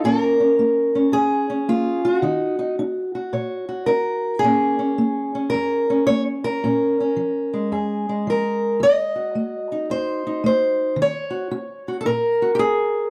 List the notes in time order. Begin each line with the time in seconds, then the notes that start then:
0.04 A#2 A#3 C#4 A#4
0.40 C#4
0.59 A#3
0.95 C#4
1.12 F2 G#4
1.18 G#4
1.50 C#4
1.69 A#3 F4
2.05 F#4
2.22 D#3 D#4
2.59 D#4
2.79 D#4
3.15 F#4
3.33 A#2 C#5
3.69 F#4
3.86 D#4 A#4
4.39 A#2 G#4
4.44 A#3 C#4
4.79 C#4
4.98 A#3
5.35 C#4
5.50 A#4
5.54 F2
5.90 C#4
6.07 A#3 C#5
6.44 A#4
6.64 A#2 C#4
7.00 C#4
7.16 F3
7.54 G#3
7.72 F2 G#4
8.09 G#3
8.27 F3 A#4
8.80 F2 D#5
9.16 F#4
9.35 A3
9.72 D#4
9.90 F2 C5
10.27 D#4
10.44 A3 C5
10.96 D#3
11.02 C#5
11.30 F#4
11.51 F#4
11.88 F#4
12.01 A4
12.05 A#2 A#4
12.42 F#4
12.55 G4
12.59 G#4